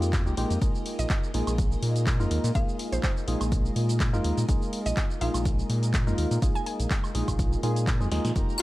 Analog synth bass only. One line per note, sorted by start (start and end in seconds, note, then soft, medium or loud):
0.00 0.28 F2 medium
0.26 0.33 C2 loud
0.37 0.45 A#1 medium
0.50 0.57 F2 loud
0.62 0.70 A#1 loud
0.99 1.06 A#1 medium
1.34 1.42 A#1 loud
1.47 1.76 A#1 medium
1.82 2.21 A#2 medium
2.20 2.27 F2 loud
2.31 2.39 D#2 medium
2.44 2.51 A#2 loud
2.55 2.63 A#1 loud
2.92 2.99 A#1 medium
3.28 3.36 A#1 loud
3.41 3.69 A#1 medium
3.76 4.15 A#2 medium
4.13 4.20 F2 loud
4.24 4.33 D#2 medium
4.38 4.44 A#2 loud
4.49 4.57 A#1 loud
4.86 4.93 A#1 medium
5.21 5.29 A#1 loud
5.34 5.63 A#1 loud
5.70 6.08 A#2 medium
6.07 6.14 F2 loud
6.18 6.26 D#2 medium
6.31 6.38 A#2 loud
6.42 6.50 A#1 loud
6.80 6.86 A#1 medium
7.15 7.23 A#1 loud
7.28 7.56 A#1 loud
7.63 8.02 A#2 medium
8.00 8.07 F2 loud
8.12 8.20 D#2 medium
8.25 8.31 A#2 loud
8.36 8.44 F1 loud